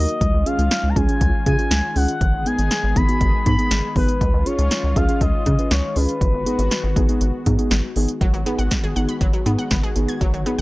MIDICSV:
0, 0, Header, 1, 7, 480
1, 0, Start_track
1, 0, Tempo, 500000
1, 203, Time_signature, 4, 2, 24, 8
1, 10189, End_track
2, 0, Start_track
2, 0, Title_t, "Analog synth lead"
2, 0, Program_c, 0, 81
2, 0, Note_on_c, 0, 75, 104
2, 446, Note_on_c, 0, 77, 107
2, 461, Note_off_c, 0, 75, 0
2, 858, Note_on_c, 0, 82, 76
2, 872, Note_off_c, 0, 77, 0
2, 925, Note_on_c, 0, 80, 108
2, 939, Note_off_c, 0, 82, 0
2, 1401, Note_off_c, 0, 80, 0
2, 1406, Note_on_c, 0, 80, 111
2, 1886, Note_on_c, 0, 78, 115
2, 1900, Note_off_c, 0, 80, 0
2, 2367, Note_on_c, 0, 80, 117
2, 2382, Note_off_c, 0, 78, 0
2, 2845, Note_on_c, 0, 83, 122
2, 2859, Note_off_c, 0, 80, 0
2, 3320, Note_off_c, 0, 83, 0
2, 3326, Note_on_c, 0, 83, 113
2, 3771, Note_off_c, 0, 83, 0
2, 3807, Note_on_c, 0, 71, 105
2, 4284, Note_on_c, 0, 73, 106
2, 4298, Note_off_c, 0, 71, 0
2, 4766, Note_on_c, 0, 77, 100
2, 4780, Note_off_c, 0, 73, 0
2, 5004, Note_on_c, 0, 75, 104
2, 5019, Note_off_c, 0, 77, 0
2, 5486, Note_on_c, 0, 73, 97
2, 5501, Note_off_c, 0, 75, 0
2, 5727, Note_on_c, 0, 71, 99
2, 5742, Note_off_c, 0, 73, 0
2, 7405, Note_off_c, 0, 71, 0
2, 10189, End_track
3, 0, Start_track
3, 0, Title_t, "Synth keys"
3, 0, Program_c, 1, 88
3, 0, Note_on_c, 1, 63, 79
3, 0, Note_on_c, 1, 66, 69
3, 0, Note_on_c, 1, 70, 86
3, 98, Note_off_c, 1, 63, 0
3, 98, Note_off_c, 1, 66, 0
3, 98, Note_off_c, 1, 70, 0
3, 443, Note_on_c, 1, 68, 80
3, 444, Note_on_c, 1, 61, 76
3, 444, Note_on_c, 1, 65, 65
3, 578, Note_off_c, 1, 61, 0
3, 578, Note_off_c, 1, 65, 0
3, 578, Note_off_c, 1, 68, 0
3, 923, Note_on_c, 1, 65, 71
3, 923, Note_on_c, 1, 68, 82
3, 924, Note_on_c, 1, 61, 78
3, 990, Note_off_c, 1, 65, 0
3, 990, Note_off_c, 1, 68, 0
3, 991, Note_off_c, 1, 61, 0
3, 1044, Note_on_c, 1, 61, 67
3, 1044, Note_on_c, 1, 65, 63
3, 1044, Note_on_c, 1, 68, 72
3, 1178, Note_off_c, 1, 61, 0
3, 1178, Note_off_c, 1, 65, 0
3, 1178, Note_off_c, 1, 68, 0
3, 1404, Note_on_c, 1, 61, 77
3, 1404, Note_on_c, 1, 65, 69
3, 1405, Note_on_c, 1, 68, 83
3, 1471, Note_off_c, 1, 61, 0
3, 1471, Note_off_c, 1, 65, 0
3, 1471, Note_off_c, 1, 68, 0
3, 1522, Note_on_c, 1, 61, 67
3, 1522, Note_on_c, 1, 65, 64
3, 1522, Note_on_c, 1, 68, 73
3, 1657, Note_off_c, 1, 61, 0
3, 1657, Note_off_c, 1, 65, 0
3, 1657, Note_off_c, 1, 68, 0
3, 1881, Note_on_c, 1, 61, 76
3, 1881, Note_on_c, 1, 68, 86
3, 1882, Note_on_c, 1, 65, 70
3, 2017, Note_off_c, 1, 61, 0
3, 2017, Note_off_c, 1, 65, 0
3, 2017, Note_off_c, 1, 68, 0
3, 2362, Note_on_c, 1, 59, 75
3, 2362, Note_on_c, 1, 63, 70
3, 2362, Note_on_c, 1, 68, 82
3, 2497, Note_off_c, 1, 59, 0
3, 2497, Note_off_c, 1, 63, 0
3, 2497, Note_off_c, 1, 68, 0
3, 2842, Note_on_c, 1, 59, 77
3, 2842, Note_on_c, 1, 63, 71
3, 2842, Note_on_c, 1, 68, 89
3, 2910, Note_off_c, 1, 59, 0
3, 2910, Note_off_c, 1, 63, 0
3, 2910, Note_off_c, 1, 68, 0
3, 2963, Note_on_c, 1, 59, 69
3, 2963, Note_on_c, 1, 63, 61
3, 2963, Note_on_c, 1, 66, 75
3, 3097, Note_off_c, 1, 59, 0
3, 3098, Note_off_c, 1, 63, 0
3, 3098, Note_off_c, 1, 66, 0
3, 3322, Note_on_c, 1, 59, 77
3, 3322, Note_on_c, 1, 63, 70
3, 3323, Note_on_c, 1, 68, 84
3, 3390, Note_off_c, 1, 59, 0
3, 3390, Note_off_c, 1, 63, 0
3, 3390, Note_off_c, 1, 68, 0
3, 3442, Note_on_c, 1, 59, 70
3, 3442, Note_on_c, 1, 63, 63
3, 3442, Note_on_c, 1, 68, 75
3, 3577, Note_off_c, 1, 59, 0
3, 3577, Note_off_c, 1, 63, 0
3, 3577, Note_off_c, 1, 68, 0
3, 3801, Note_on_c, 1, 59, 77
3, 3802, Note_on_c, 1, 63, 70
3, 3802, Note_on_c, 1, 68, 85
3, 3937, Note_off_c, 1, 59, 0
3, 3937, Note_off_c, 1, 63, 0
3, 3937, Note_off_c, 1, 68, 0
3, 4282, Note_on_c, 1, 61, 75
3, 4282, Note_on_c, 1, 65, 70
3, 4282, Note_on_c, 1, 68, 81
3, 4417, Note_off_c, 1, 61, 0
3, 4417, Note_off_c, 1, 65, 0
3, 4417, Note_off_c, 1, 68, 0
3, 4762, Note_on_c, 1, 61, 79
3, 4762, Note_on_c, 1, 65, 71
3, 4763, Note_on_c, 1, 68, 85
3, 4830, Note_off_c, 1, 61, 0
3, 4830, Note_off_c, 1, 65, 0
3, 4830, Note_off_c, 1, 68, 0
3, 4883, Note_on_c, 1, 61, 69
3, 4883, Note_on_c, 1, 65, 66
3, 4883, Note_on_c, 1, 68, 77
3, 5017, Note_off_c, 1, 61, 0
3, 5017, Note_off_c, 1, 65, 0
3, 5018, Note_off_c, 1, 68, 0
3, 5242, Note_on_c, 1, 65, 68
3, 5243, Note_on_c, 1, 61, 77
3, 5243, Note_on_c, 1, 68, 84
3, 5310, Note_off_c, 1, 61, 0
3, 5310, Note_off_c, 1, 65, 0
3, 5310, Note_off_c, 1, 68, 0
3, 5364, Note_on_c, 1, 61, 68
3, 5364, Note_on_c, 1, 65, 66
3, 5364, Note_on_c, 1, 71, 74
3, 5498, Note_off_c, 1, 61, 0
3, 5498, Note_off_c, 1, 65, 0
3, 5498, Note_off_c, 1, 71, 0
3, 5723, Note_on_c, 1, 65, 70
3, 5724, Note_on_c, 1, 61, 77
3, 5724, Note_on_c, 1, 68, 83
3, 5858, Note_off_c, 1, 61, 0
3, 5858, Note_off_c, 1, 65, 0
3, 5858, Note_off_c, 1, 68, 0
3, 6204, Note_on_c, 1, 59, 74
3, 6204, Note_on_c, 1, 63, 69
3, 6204, Note_on_c, 1, 68, 85
3, 6338, Note_off_c, 1, 59, 0
3, 6338, Note_off_c, 1, 63, 0
3, 6338, Note_off_c, 1, 68, 0
3, 6683, Note_on_c, 1, 63, 84
3, 6684, Note_on_c, 1, 59, 93
3, 6684, Note_on_c, 1, 68, 102
3, 6750, Note_off_c, 1, 63, 0
3, 6751, Note_off_c, 1, 59, 0
3, 6751, Note_off_c, 1, 68, 0
3, 6805, Note_on_c, 1, 63, 78
3, 6806, Note_on_c, 1, 59, 81
3, 6806, Note_on_c, 1, 68, 91
3, 6939, Note_off_c, 1, 59, 0
3, 6939, Note_off_c, 1, 63, 0
3, 6939, Note_off_c, 1, 68, 0
3, 7164, Note_on_c, 1, 59, 89
3, 7164, Note_on_c, 1, 63, 83
3, 7164, Note_on_c, 1, 68, 95
3, 7231, Note_off_c, 1, 59, 0
3, 7231, Note_off_c, 1, 63, 0
3, 7231, Note_off_c, 1, 68, 0
3, 7285, Note_on_c, 1, 59, 82
3, 7285, Note_on_c, 1, 63, 74
3, 7285, Note_on_c, 1, 68, 90
3, 7418, Note_off_c, 1, 68, 0
3, 7419, Note_off_c, 1, 59, 0
3, 7419, Note_off_c, 1, 63, 0
3, 7646, Note_on_c, 1, 59, 89
3, 7646, Note_on_c, 1, 63, 83
3, 7646, Note_on_c, 1, 68, 103
3, 7779, Note_off_c, 1, 59, 0
3, 7779, Note_off_c, 1, 63, 0
3, 7779, Note_off_c, 1, 68, 0
3, 8125, Note_on_c, 1, 59, 86
3, 8125, Note_on_c, 1, 63, 79
3, 8125, Note_on_c, 1, 68, 97
3, 8259, Note_off_c, 1, 59, 0
3, 8259, Note_off_c, 1, 63, 0
3, 8259, Note_off_c, 1, 68, 0
3, 8605, Note_on_c, 1, 59, 89
3, 8605, Note_on_c, 1, 63, 81
3, 8605, Note_on_c, 1, 68, 101
3, 8738, Note_off_c, 1, 59, 0
3, 8738, Note_off_c, 1, 63, 0
3, 8739, Note_off_c, 1, 68, 0
3, 9083, Note_on_c, 1, 63, 79
3, 9084, Note_on_c, 1, 59, 87
3, 9084, Note_on_c, 1, 68, 94
3, 9218, Note_off_c, 1, 59, 0
3, 9218, Note_off_c, 1, 63, 0
3, 9218, Note_off_c, 1, 68, 0
3, 9563, Note_on_c, 1, 59, 89
3, 9563, Note_on_c, 1, 63, 80
3, 9563, Note_on_c, 1, 68, 99
3, 9698, Note_off_c, 1, 59, 0
3, 9698, Note_off_c, 1, 63, 0
3, 9698, Note_off_c, 1, 68, 0
3, 10043, Note_on_c, 1, 59, 86
3, 10043, Note_on_c, 1, 63, 78
3, 10043, Note_on_c, 1, 68, 95
3, 10177, Note_off_c, 1, 63, 0
3, 10178, Note_off_c, 1, 59, 0
3, 10178, Note_off_c, 1, 68, 0
3, 10189, End_track
4, 0, Start_track
4, 0, Title_t, "Analog synth pad"
4, 0, Program_c, 2, 89
4, 0, Note_on_c, 2, 51, 78
4, 0, Note_on_c, 2, 54, 76
4, 0, Note_on_c, 2, 58, 74
4, 0, Note_on_c, 2, 66, 92
4, 184, Note_off_c, 2, 54, 0
4, 184, Note_off_c, 2, 58, 0
4, 184, Note_off_c, 2, 66, 0
4, 201, Note_on_c, 2, 56, 75
4, 201, Note_on_c, 2, 61, 73
4, 201, Note_on_c, 2, 65, 88
4, 2102, Note_off_c, 2, 61, 0
4, 2103, Note_off_c, 2, 65, 0
4, 2121, Note_on_c, 2, 68, 90
4, 2122, Note_on_c, 2, 59, 74
4, 4022, Note_off_c, 2, 68, 0
4, 4023, Note_off_c, 2, 59, 0
4, 4044, Note_on_c, 2, 61, 73
4, 4044, Note_on_c, 2, 65, 89
4, 5944, Note_off_c, 2, 61, 0
4, 5944, Note_off_c, 2, 65, 0
4, 5963, Note_on_c, 2, 59, 73
4, 5964, Note_on_c, 2, 66, 93
4, 7843, Note_off_c, 2, 56, 0
4, 7844, Note_off_c, 2, 51, 0
4, 7864, Note_off_c, 2, 59, 0
4, 7864, Note_off_c, 2, 66, 0
4, 7880, Note_on_c, 2, 59, 71
4, 7880, Note_on_c, 2, 66, 91
4, 7881, Note_on_c, 2, 51, 80
4, 7882, Note_on_c, 2, 56, 72
4, 10189, Note_off_c, 2, 51, 0
4, 10189, Note_off_c, 2, 56, 0
4, 10189, Note_off_c, 2, 59, 0
4, 10189, Note_off_c, 2, 66, 0
4, 10189, End_track
5, 0, Start_track
5, 0, Title_t, "Synth arpeggio sound"
5, 0, Program_c, 3, 84
5, 7882, Note_on_c, 3, 54, 91
5, 7992, Note_off_c, 3, 54, 0
5, 8004, Note_on_c, 3, 54, 71
5, 8117, Note_off_c, 3, 54, 0
5, 8123, Note_on_c, 3, 59, 84
5, 8237, Note_off_c, 3, 59, 0
5, 8241, Note_on_c, 3, 78, 80
5, 8356, Note_off_c, 3, 78, 0
5, 8482, Note_on_c, 3, 68, 78
5, 8596, Note_off_c, 3, 68, 0
5, 8602, Note_on_c, 3, 78, 82
5, 8716, Note_off_c, 3, 78, 0
5, 8722, Note_on_c, 3, 83, 83
5, 8836, Note_off_c, 3, 83, 0
5, 8841, Note_on_c, 3, 54, 86
5, 8949, Note_off_c, 3, 54, 0
5, 8961, Note_on_c, 3, 54, 71
5, 9075, Note_off_c, 3, 54, 0
5, 9081, Note_on_c, 3, 59, 79
5, 9195, Note_off_c, 3, 59, 0
5, 9202, Note_on_c, 3, 78, 79
5, 9316, Note_off_c, 3, 78, 0
5, 9321, Note_on_c, 3, 59, 83
5, 9436, Note_off_c, 3, 59, 0
5, 9441, Note_on_c, 3, 68, 83
5, 9555, Note_off_c, 3, 68, 0
5, 9682, Note_on_c, 3, 92, 85
5, 9796, Note_off_c, 3, 92, 0
5, 9801, Note_on_c, 3, 54, 88
5, 9911, Note_off_c, 3, 54, 0
5, 9923, Note_on_c, 3, 54, 70
5, 10036, Note_off_c, 3, 54, 0
5, 10042, Note_on_c, 3, 59, 81
5, 10156, Note_off_c, 3, 59, 0
5, 10189, End_track
6, 0, Start_track
6, 0, Title_t, "Analog synth bass"
6, 0, Program_c, 4, 38
6, 202, Note_on_c, 4, 37, 111
6, 304, Note_off_c, 4, 37, 0
6, 323, Note_on_c, 4, 37, 99
6, 425, Note_off_c, 4, 37, 0
6, 563, Note_on_c, 4, 37, 104
6, 665, Note_off_c, 4, 37, 0
6, 802, Note_on_c, 4, 37, 92
6, 904, Note_off_c, 4, 37, 0
6, 923, Note_on_c, 4, 37, 101
6, 1025, Note_off_c, 4, 37, 0
6, 1162, Note_on_c, 4, 37, 109
6, 1264, Note_off_c, 4, 37, 0
6, 1406, Note_on_c, 4, 49, 105
6, 1506, Note_off_c, 4, 49, 0
6, 1641, Note_on_c, 4, 37, 111
6, 1744, Note_off_c, 4, 37, 0
6, 1881, Note_on_c, 4, 37, 99
6, 1984, Note_off_c, 4, 37, 0
6, 2122, Note_on_c, 4, 32, 112
6, 2224, Note_off_c, 4, 32, 0
6, 2242, Note_on_c, 4, 32, 95
6, 2344, Note_off_c, 4, 32, 0
6, 2482, Note_on_c, 4, 32, 101
6, 2584, Note_off_c, 4, 32, 0
6, 2723, Note_on_c, 4, 32, 102
6, 2825, Note_off_c, 4, 32, 0
6, 2842, Note_on_c, 4, 32, 104
6, 2944, Note_off_c, 4, 32, 0
6, 3081, Note_on_c, 4, 32, 99
6, 3183, Note_off_c, 4, 32, 0
6, 3324, Note_on_c, 4, 44, 102
6, 3425, Note_off_c, 4, 44, 0
6, 3563, Note_on_c, 4, 32, 100
6, 3665, Note_off_c, 4, 32, 0
6, 3800, Note_on_c, 4, 32, 110
6, 3903, Note_off_c, 4, 32, 0
6, 4042, Note_on_c, 4, 37, 108
6, 4144, Note_off_c, 4, 37, 0
6, 4162, Note_on_c, 4, 37, 97
6, 4264, Note_off_c, 4, 37, 0
6, 4402, Note_on_c, 4, 37, 102
6, 4504, Note_off_c, 4, 37, 0
6, 4643, Note_on_c, 4, 37, 97
6, 4745, Note_off_c, 4, 37, 0
6, 4763, Note_on_c, 4, 37, 106
6, 4865, Note_off_c, 4, 37, 0
6, 5001, Note_on_c, 4, 37, 104
6, 5104, Note_off_c, 4, 37, 0
6, 5246, Note_on_c, 4, 49, 99
6, 5346, Note_off_c, 4, 49, 0
6, 5484, Note_on_c, 4, 37, 105
6, 5585, Note_off_c, 4, 37, 0
6, 5724, Note_on_c, 4, 37, 103
6, 5825, Note_off_c, 4, 37, 0
6, 5964, Note_on_c, 4, 32, 112
6, 6065, Note_off_c, 4, 32, 0
6, 6083, Note_on_c, 4, 32, 105
6, 6185, Note_off_c, 4, 32, 0
6, 6323, Note_on_c, 4, 32, 107
6, 6425, Note_off_c, 4, 32, 0
6, 6563, Note_on_c, 4, 32, 98
6, 6665, Note_off_c, 4, 32, 0
6, 6685, Note_on_c, 4, 32, 96
6, 6786, Note_off_c, 4, 32, 0
6, 6923, Note_on_c, 4, 32, 106
6, 7024, Note_off_c, 4, 32, 0
6, 7166, Note_on_c, 4, 44, 97
6, 7266, Note_off_c, 4, 44, 0
6, 7402, Note_on_c, 4, 32, 104
6, 7504, Note_off_c, 4, 32, 0
6, 7644, Note_on_c, 4, 32, 113
6, 7745, Note_off_c, 4, 32, 0
6, 7883, Note_on_c, 4, 32, 111
6, 7984, Note_off_c, 4, 32, 0
6, 8004, Note_on_c, 4, 32, 98
6, 8105, Note_off_c, 4, 32, 0
6, 8244, Note_on_c, 4, 32, 98
6, 8345, Note_off_c, 4, 32, 0
6, 8483, Note_on_c, 4, 32, 103
6, 8585, Note_off_c, 4, 32, 0
6, 8603, Note_on_c, 4, 32, 93
6, 8705, Note_off_c, 4, 32, 0
6, 8841, Note_on_c, 4, 32, 105
6, 8943, Note_off_c, 4, 32, 0
6, 9082, Note_on_c, 4, 44, 96
6, 9184, Note_off_c, 4, 44, 0
6, 9322, Note_on_c, 4, 32, 101
6, 9424, Note_off_c, 4, 32, 0
6, 9563, Note_on_c, 4, 32, 102
6, 9665, Note_off_c, 4, 32, 0
6, 9802, Note_on_c, 4, 32, 99
6, 9904, Note_off_c, 4, 32, 0
6, 9922, Note_on_c, 4, 32, 95
6, 10024, Note_off_c, 4, 32, 0
6, 10189, End_track
7, 0, Start_track
7, 0, Title_t, "Drums"
7, 83, Note_on_c, 9, 42, 62
7, 179, Note_off_c, 9, 42, 0
7, 203, Note_on_c, 9, 36, 109
7, 204, Note_on_c, 9, 42, 68
7, 299, Note_off_c, 9, 36, 0
7, 300, Note_off_c, 9, 42, 0
7, 445, Note_on_c, 9, 42, 75
7, 541, Note_off_c, 9, 42, 0
7, 565, Note_on_c, 9, 42, 54
7, 661, Note_off_c, 9, 42, 0
7, 682, Note_on_c, 9, 42, 74
7, 685, Note_on_c, 9, 38, 110
7, 778, Note_off_c, 9, 42, 0
7, 781, Note_off_c, 9, 38, 0
7, 924, Note_on_c, 9, 36, 108
7, 926, Note_on_c, 9, 42, 74
7, 1020, Note_off_c, 9, 36, 0
7, 1022, Note_off_c, 9, 42, 0
7, 1044, Note_on_c, 9, 42, 55
7, 1140, Note_off_c, 9, 42, 0
7, 1161, Note_on_c, 9, 42, 86
7, 1162, Note_on_c, 9, 36, 99
7, 1257, Note_off_c, 9, 42, 0
7, 1258, Note_off_c, 9, 36, 0
7, 1405, Note_on_c, 9, 42, 83
7, 1406, Note_on_c, 9, 36, 86
7, 1501, Note_off_c, 9, 42, 0
7, 1502, Note_off_c, 9, 36, 0
7, 1525, Note_on_c, 9, 42, 55
7, 1621, Note_off_c, 9, 42, 0
7, 1641, Note_on_c, 9, 42, 69
7, 1643, Note_on_c, 9, 38, 121
7, 1737, Note_off_c, 9, 42, 0
7, 1739, Note_off_c, 9, 38, 0
7, 1880, Note_on_c, 9, 46, 80
7, 1976, Note_off_c, 9, 46, 0
7, 2001, Note_on_c, 9, 42, 63
7, 2097, Note_off_c, 9, 42, 0
7, 2122, Note_on_c, 9, 36, 109
7, 2123, Note_on_c, 9, 42, 68
7, 2218, Note_off_c, 9, 36, 0
7, 2219, Note_off_c, 9, 42, 0
7, 2363, Note_on_c, 9, 42, 76
7, 2459, Note_off_c, 9, 42, 0
7, 2482, Note_on_c, 9, 42, 52
7, 2578, Note_off_c, 9, 42, 0
7, 2600, Note_on_c, 9, 42, 73
7, 2603, Note_on_c, 9, 38, 115
7, 2696, Note_off_c, 9, 42, 0
7, 2699, Note_off_c, 9, 38, 0
7, 2843, Note_on_c, 9, 36, 110
7, 2843, Note_on_c, 9, 42, 76
7, 2939, Note_off_c, 9, 36, 0
7, 2939, Note_off_c, 9, 42, 0
7, 2963, Note_on_c, 9, 42, 56
7, 3059, Note_off_c, 9, 42, 0
7, 3080, Note_on_c, 9, 42, 85
7, 3081, Note_on_c, 9, 36, 101
7, 3176, Note_off_c, 9, 42, 0
7, 3177, Note_off_c, 9, 36, 0
7, 3322, Note_on_c, 9, 42, 85
7, 3325, Note_on_c, 9, 36, 90
7, 3418, Note_off_c, 9, 42, 0
7, 3421, Note_off_c, 9, 36, 0
7, 3444, Note_on_c, 9, 42, 54
7, 3540, Note_off_c, 9, 42, 0
7, 3561, Note_on_c, 9, 42, 69
7, 3563, Note_on_c, 9, 38, 116
7, 3657, Note_off_c, 9, 42, 0
7, 3659, Note_off_c, 9, 38, 0
7, 3799, Note_on_c, 9, 46, 81
7, 3800, Note_on_c, 9, 36, 95
7, 3895, Note_off_c, 9, 46, 0
7, 3896, Note_off_c, 9, 36, 0
7, 3922, Note_on_c, 9, 42, 61
7, 4018, Note_off_c, 9, 42, 0
7, 4042, Note_on_c, 9, 36, 110
7, 4044, Note_on_c, 9, 42, 67
7, 4138, Note_off_c, 9, 36, 0
7, 4140, Note_off_c, 9, 42, 0
7, 4283, Note_on_c, 9, 42, 75
7, 4379, Note_off_c, 9, 42, 0
7, 4403, Note_on_c, 9, 42, 53
7, 4499, Note_off_c, 9, 42, 0
7, 4521, Note_on_c, 9, 42, 75
7, 4524, Note_on_c, 9, 38, 116
7, 4617, Note_off_c, 9, 42, 0
7, 4620, Note_off_c, 9, 38, 0
7, 4763, Note_on_c, 9, 36, 107
7, 4765, Note_on_c, 9, 42, 75
7, 4859, Note_off_c, 9, 36, 0
7, 4861, Note_off_c, 9, 42, 0
7, 4883, Note_on_c, 9, 42, 57
7, 4979, Note_off_c, 9, 42, 0
7, 5001, Note_on_c, 9, 36, 99
7, 5001, Note_on_c, 9, 42, 86
7, 5097, Note_off_c, 9, 36, 0
7, 5097, Note_off_c, 9, 42, 0
7, 5243, Note_on_c, 9, 42, 85
7, 5245, Note_on_c, 9, 36, 89
7, 5339, Note_off_c, 9, 42, 0
7, 5341, Note_off_c, 9, 36, 0
7, 5364, Note_on_c, 9, 42, 56
7, 5460, Note_off_c, 9, 42, 0
7, 5481, Note_on_c, 9, 42, 73
7, 5483, Note_on_c, 9, 38, 116
7, 5577, Note_off_c, 9, 42, 0
7, 5579, Note_off_c, 9, 38, 0
7, 5721, Note_on_c, 9, 46, 82
7, 5817, Note_off_c, 9, 46, 0
7, 5844, Note_on_c, 9, 42, 60
7, 5940, Note_off_c, 9, 42, 0
7, 5963, Note_on_c, 9, 36, 109
7, 5966, Note_on_c, 9, 42, 65
7, 6059, Note_off_c, 9, 36, 0
7, 6062, Note_off_c, 9, 42, 0
7, 6206, Note_on_c, 9, 42, 76
7, 6302, Note_off_c, 9, 42, 0
7, 6325, Note_on_c, 9, 42, 53
7, 6421, Note_off_c, 9, 42, 0
7, 6443, Note_on_c, 9, 42, 73
7, 6446, Note_on_c, 9, 38, 115
7, 6539, Note_off_c, 9, 42, 0
7, 6542, Note_off_c, 9, 38, 0
7, 6684, Note_on_c, 9, 36, 109
7, 6686, Note_on_c, 9, 42, 77
7, 6780, Note_off_c, 9, 36, 0
7, 6782, Note_off_c, 9, 42, 0
7, 6805, Note_on_c, 9, 42, 55
7, 6901, Note_off_c, 9, 42, 0
7, 6921, Note_on_c, 9, 42, 84
7, 7017, Note_off_c, 9, 42, 0
7, 7164, Note_on_c, 9, 42, 83
7, 7166, Note_on_c, 9, 36, 87
7, 7260, Note_off_c, 9, 42, 0
7, 7262, Note_off_c, 9, 36, 0
7, 7284, Note_on_c, 9, 42, 53
7, 7380, Note_off_c, 9, 42, 0
7, 7401, Note_on_c, 9, 42, 68
7, 7403, Note_on_c, 9, 38, 117
7, 7497, Note_off_c, 9, 42, 0
7, 7499, Note_off_c, 9, 38, 0
7, 7640, Note_on_c, 9, 46, 82
7, 7736, Note_off_c, 9, 46, 0
7, 7761, Note_on_c, 9, 42, 62
7, 7857, Note_off_c, 9, 42, 0
7, 7883, Note_on_c, 9, 36, 105
7, 7884, Note_on_c, 9, 42, 64
7, 7979, Note_off_c, 9, 36, 0
7, 7980, Note_off_c, 9, 42, 0
7, 8005, Note_on_c, 9, 42, 47
7, 8101, Note_off_c, 9, 42, 0
7, 8124, Note_on_c, 9, 42, 74
7, 8220, Note_off_c, 9, 42, 0
7, 8244, Note_on_c, 9, 42, 52
7, 8340, Note_off_c, 9, 42, 0
7, 8362, Note_on_c, 9, 42, 72
7, 8364, Note_on_c, 9, 38, 107
7, 8365, Note_on_c, 9, 36, 107
7, 8458, Note_off_c, 9, 42, 0
7, 8460, Note_off_c, 9, 38, 0
7, 8461, Note_off_c, 9, 36, 0
7, 8483, Note_on_c, 9, 42, 55
7, 8579, Note_off_c, 9, 42, 0
7, 8604, Note_on_c, 9, 42, 73
7, 8700, Note_off_c, 9, 42, 0
7, 8723, Note_on_c, 9, 42, 53
7, 8819, Note_off_c, 9, 42, 0
7, 8841, Note_on_c, 9, 36, 115
7, 8841, Note_on_c, 9, 42, 81
7, 8937, Note_off_c, 9, 36, 0
7, 8937, Note_off_c, 9, 42, 0
7, 8961, Note_on_c, 9, 42, 55
7, 9057, Note_off_c, 9, 42, 0
7, 9082, Note_on_c, 9, 42, 82
7, 9178, Note_off_c, 9, 42, 0
7, 9203, Note_on_c, 9, 42, 54
7, 9299, Note_off_c, 9, 42, 0
7, 9319, Note_on_c, 9, 42, 69
7, 9321, Note_on_c, 9, 38, 117
7, 9322, Note_on_c, 9, 36, 103
7, 9415, Note_off_c, 9, 42, 0
7, 9417, Note_off_c, 9, 38, 0
7, 9418, Note_off_c, 9, 36, 0
7, 9444, Note_on_c, 9, 42, 51
7, 9540, Note_off_c, 9, 42, 0
7, 9559, Note_on_c, 9, 42, 78
7, 9655, Note_off_c, 9, 42, 0
7, 9682, Note_on_c, 9, 42, 59
7, 9778, Note_off_c, 9, 42, 0
7, 9802, Note_on_c, 9, 36, 104
7, 9803, Note_on_c, 9, 42, 65
7, 9898, Note_off_c, 9, 36, 0
7, 9899, Note_off_c, 9, 42, 0
7, 9924, Note_on_c, 9, 42, 49
7, 10020, Note_off_c, 9, 42, 0
7, 10043, Note_on_c, 9, 42, 74
7, 10139, Note_off_c, 9, 42, 0
7, 10189, End_track
0, 0, End_of_file